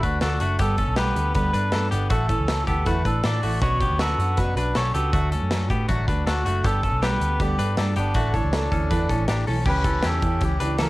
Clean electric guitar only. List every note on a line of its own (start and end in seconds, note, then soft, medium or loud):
0.03 0.21 D4 soft
0.03 0.21 B4 medium
0.22 0.41 D4 medium
0.22 0.41 A4 medium
0.41 0.60 A3 medium
0.41 0.59 F#4 medium
0.59 0.79 B3 medium
0.59 0.78 G4 medium
0.78 0.97 C#4 medium
0.78 0.97 A4 medium
0.97 1.51 B3 medium
0.97 1.50 G4 medium
1.53 1.72 D4 medium
1.53 1.72 B4 medium
1.72 1.92 D4 medium
1.72 1.91 A4 medium
1.91 2.11 B3 medium
1.91 2.10 G4 medium
2.10 2.30 A3 medium
2.10 2.29 F#4 medium
2.29 2.65 C#4 medium
2.29 2.65 A4 medium
2.67 2.87 B3 medium
2.67 2.86 G4 medium
2.87 3.06 A3 medium
2.87 3.05 F#4 medium
3.05 3.24 D4 soft
3.05 3.23 B4 medium
3.24 3.43 D4 medium
3.24 3.43 A4 medium
3.43 3.62 A3 medium
3.43 3.61 F#4 medium
3.62 3.81 B3 medium
3.62 3.81 F#4 medium
3.82 4.00 B3 medium
3.82 4.00 G4 medium
4.01 4.54 B3 medium
4.01 4.54 F#4 medium
4.57 4.76 D4 soft
4.57 4.75 B4 medium
4.75 4.95 C#4 soft
4.75 4.94 A4 medium
4.94 5.14 B3 medium
4.94 5.13 G4 medium
5.13 5.32 A3 medium
5.13 5.32 F#4 medium
5.32 5.68 C#4 medium
5.32 5.68 A4 medium
5.70 5.89 B3 medium
5.70 5.88 G4 medium
5.88 6.08 A3 medium
5.88 6.07 F#4 medium
6.08 6.26 D4 medium
6.08 6.26 B4 medium
6.27 6.46 D4 medium
6.27 6.45 A4 medium
6.45 6.65 A3 medium
6.45 6.64 F#4 medium
6.64 6.83 B3 medium
6.64 6.83 G4 medium
6.83 7.02 C#4 medium
6.83 7.02 A4 medium
7.02 7.56 B3 medium
7.02 7.55 G4 medium
7.59 7.78 D4 soft
7.59 7.78 B4 medium
7.78 7.97 D4 medium
7.78 7.96 A4 medium
7.97 8.16 B3 medium
7.97 8.15 G4 medium
8.16 8.35 A3 medium
8.16 8.34 F#4 medium
8.34 8.70 A4 medium
8.34 8.70 C#5 medium
8.72 8.91 C#4 medium
8.72 8.91 A4 medium
8.91 9.10 D4 medium
8.91 9.10 B4 medium
9.10 9.29 C#4 medium
9.10 9.28 A4 medium
9.29 9.48 D4 medium
9.29 9.47 G4 medium
9.47 9.66 C#4 medium
9.47 9.66 A4 medium
9.66 9.84 C#4 medium
9.66 9.85 G4 medium
9.85 10.04 C#4 medium
9.85 10.04 A4 medium
10.04 10.58 C#4 medium
10.04 10.57 G4 medium
10.60 10.79 D4 medium
10.60 10.79 B4 medium
10.79 10.89 C#4 medium
10.79 10.89 A4 medium